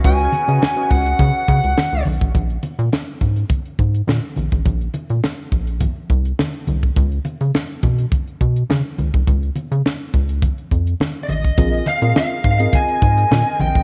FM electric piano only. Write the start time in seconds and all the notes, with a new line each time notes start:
0.04 C#4 F#4 B4 D#5
0.48 C#4 F#4 B4 D#5
0.76 C#4 F#4 B4 D#5
11.58 C4 F4 G#4 A#4 D#5
12.02 C4 F4 G#4 A#4 D#5
12.59 C4 F4 G#4 A#4 D#5